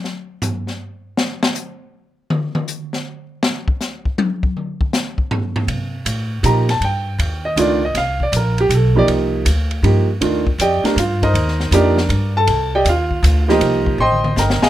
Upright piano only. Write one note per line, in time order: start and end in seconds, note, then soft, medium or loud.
6.43 6.66 F3 medium
6.43 6.66 A#3 soft
6.43 6.67 D#4 soft
6.43 6.67 G4 medium
6.43 6.69 A#5 medium
6.70 6.82 A5 medium
6.85 7.42 G5 medium
7.45 7.57 D#5 medium
7.57 7.80 D#3 medium
7.57 7.80 A3 medium
7.57 7.80 D4 medium
7.57 7.80 F4 medium
7.57 7.83 D5 medium
7.85 7.96 D#5 medium
7.97 8.21 F5 medium
8.23 8.34 D5 medium
8.36 8.59 A#4 medium
8.60 8.72 G4 medium
8.74 8.97 A4 medium
8.95 9.43 F3 medium
8.95 9.43 A#3 medium
8.95 9.44 D#4 medium
8.95 9.44 G4 medium
8.95 9.05 D5 medium
9.83 10.06 F3 medium
9.83 10.06 A#3 medium
9.83 10.06 D#4 soft
9.83 10.07 G4 medium
10.21 10.44 D#3 medium
10.21 10.44 A3 medium
10.21 10.44 D4 medium
10.21 10.44 F4 medium
10.61 10.83 G4 medium
10.61 10.95 D5 medium
10.61 10.96 D#5 medium
10.61 10.95 G5 medium
10.84 10.95 A3 medium
10.84 10.96 D4 medium
10.84 10.96 G4 medium
10.84 10.96 A#4 medium
10.99 11.22 F4 medium
10.99 11.22 F5 medium
11.23 11.69 D#4 medium
11.23 11.69 A#4 medium
11.23 11.70 C5 medium
11.23 11.70 D#5 medium
11.72 11.95 F3 medium
11.72 11.95 A#3 medium
11.72 12.33 D4 medium
11.72 11.95 D#4 medium
11.72 11.95 G4 medium
11.72 12.32 A#4 medium
11.72 12.32 D5 medium
12.37 12.71 A4 medium
12.37 12.71 A5 loud
12.75 12.87 G4 medium
12.75 12.86 D5 medium
12.75 12.87 D#5 medium
12.75 12.86 G5 medium
12.89 13.46 F4 medium
12.89 13.46 F5 medium
13.48 13.96 F3 medium
13.48 13.96 A#3 medium
13.48 13.97 D#4 medium
13.48 13.97 G4 medium
13.48 13.97 A#4 medium
13.48 13.97 C5 medium
13.48 13.96 D#5 medium
14.00 14.35 C5 medium
14.00 14.35 D#5 medium
14.00 14.35 G5 medium
14.00 14.35 C6 loud
14.39 14.62 A#4 medium
14.39 14.61 D#5 medium
14.39 14.62 G5 medium
14.39 14.62 A#5 medium
14.62 14.70 G#4 medium
14.62 14.70 D#5 medium
14.62 14.70 F5 medium
14.62 14.70 G#5 medium